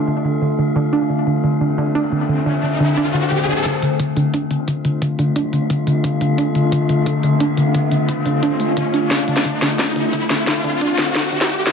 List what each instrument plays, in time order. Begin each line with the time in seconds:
Already playing: synth drone D3 A3 F4
0.08 synth arpeggio sound D3
0.25 synth arpeggio sound D3
0.42 synth arpeggio sound D3
0.59 synth arpeggio sound D3
0.76 synth arpeggio sound D3
0.93 synth drone C4, synth arpeggio sound D4, riser
1.10 synth arpeggio sound D3
1.27 synth arpeggio sound D3
1.44 synth arpeggio sound D3
1.61 synth arpeggio sound D3
1.78 synth arpeggio sound D3
1.95 synth arpeggio sound D4
2.12 synth arpeggio sound D3
2.29 synth arpeggio sound D3
2.46 synth arpeggio sound D3
2.63 synth arpeggio sound D3
2.80 synth arpeggio sound D3
2.97 synth arpeggio sound D4
3.14 synth arpeggio sound D3
3.31 synth arpeggio sound D3
3.48 synth arpeggio sound D3
3.65 synth drone D3 A3 F4, synth arpeggio sound D3, kick, closed hi-hat, riser
3.83 synth arpeggio sound D3, closed hi-hat
4.00 synth arpeggio sound D3, kick, closed hi-hat
4.17 synth arpeggio sound D3, closed hi-hat
4.34 synth arpeggio sound D4, kick, closed hi-hat
4.51 synth arpeggio sound D3, closed hi-hat
4.68 synth arpeggio sound D3, kick, closed hi-hat
4.85 synth arpeggio sound D3, closed hi-hat
5.02 synth arpeggio sound D3, kick, closed hi-hat
5.19 synth arpeggio sound D3, closed hi-hat
5.36 synth arpeggio sound D4, kick, closed hi-hat
5.53 synth arpeggio sound D3, closed hi-hat
5.70 synth arpeggio sound D3, kick, closed hi-hat
5.87 synth arpeggio sound D3, closed hi-hat
6.04 synth arpeggio sound D3, kick, closed hi-hat
6.21 synth arpeggio sound D3, closed hi-hat
6.38 synth arpeggio sound D4, kick, closed hi-hat
6.55 synth arpeggio sound D3, closed hi-hat
6.72 synth arpeggio sound D3, kick, closed hi-hat
6.89 synth arpeggio sound D3, closed hi-hat
7.06 synth arpeggio sound D3, kick, closed hi-hat
7.23 synth arpeggio sound D3, closed hi-hat
7.40 synth arpeggio sound D4, kick, closed hi-hat
7.57 synth arpeggio sound D3, closed hi-hat
7.75 synth arpeggio sound D3, kick, closed hi-hat
7.92 synth arpeggio sound D3, closed hi-hat
8.09 synth arpeggio sound D3, kick, closed hi-hat
8.26 synth arpeggio sound D3, closed hi-hat
8.43 synth arpeggio sound D4, kick, closed hi-hat
8.60 synth arpeggio sound A3, closed hi-hat
8.77 synth arpeggio sound D3, kick, closed hi-hat
8.94 synth arpeggio sound D4, closed hi-hat
9.11 synth arpeggio sound D3, synth drone C4, kick, snare, closed hi-hat
9.28 synth arpeggio sound D3, closed hi-hat
9.36 snare
9.45 synth arpeggio sound D3, kick, closed hi-hat
9.62 synth arpeggio sound D3, snare, closed hi-hat
9.79 synth arpeggio sound D4, kick, snare, closed hi-hat
9.96 synth arpeggio sound D3, closed hi-hat
10.13 synth arpeggio sound D3, kick, closed hi-hat
10.30 synth arpeggio sound D3, snare, closed hi-hat
10.47 synth arpeggio sound D3, kick, snare, closed hi-hat
10.64 synth arpeggio sound D3, closed hi-hat
10.81 synth arpeggio sound D4, kick, closed hi-hat
10.98 synth arpeggio sound D3, snare, closed hi-hat
11.15 synth arpeggio sound D3, kick, snare, closed hi-hat
11.32 synth arpeggio sound D3, closed hi-hat
11.41 snare
11.49 synth arpeggio sound D3, kick, closed hi-hat
11.66 synth arpeggio sound D3, snare, closed hi-hat